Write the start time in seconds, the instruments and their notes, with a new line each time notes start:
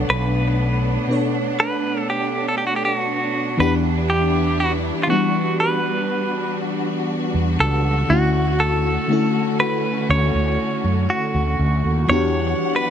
Already playing: fm electric piano B2 B3 D4 A4 C#5, string section A3 B3 D4 F#5
0.10 fretless electric bass B1, clean electric guitar B4
1.08 fm electric piano B2 B3 D4 A4
1.12 fm electric piano C#5
1.60 clean electric guitar B4
2.10 clean electric guitar G4
2.48 clean electric guitar A4
2.58 clean electric guitar G4
2.67 clean electric guitar F#4
2.76 clean electric guitar G4
2.85 clean electric guitar G4
2.96 clean electric guitar F#4
3.57 fretless electric bass E2, fm electric piano E3 B3 D4 F#5, string section G3 B3 E4, clean electric guitar B4
3.62 fm electric piano G4
4.10 clean electric guitar G4
4.60 clean electric guitar F#4
5.03 clean electric guitar F4
5.07 fm electric piano E3 B3 D4 F#4, clean electric guitar F#4
5.12 fm electric piano G3
5.59 string section F#4, clean electric guitar B4
7.35 fretless electric bass E2
7.60 fretless electric bass C#2, clean electric guitar A4
8.08 fretless electric bass D2, fm electric piano D3 A3 C#4 E4, string section D3 A3 C#4, clean electric guitar F#4
8.13 fm electric piano F#4
8.60 clean electric guitar A4
9.08 fm electric piano D3 A3 C#4 E4
9.13 fm electric piano A4
9.60 clean electric guitar B4
10.10 fretless electric bass D2, clean electric guitar C#5
10.34 fretless electric bass D2
10.84 fretless electric bass F#2
11.10 clean electric guitar F#4
11.35 fretless electric bass D2
11.59 fretless electric bass D2
11.85 fretless electric bass D#2
12.08 fretless electric bass E2, fm electric piano E3 B3 D4 F#4, string section E3 G3 D4 F#5, clean electric guitar C#5
12.13 fm electric piano G4
12.76 clean electric guitar B4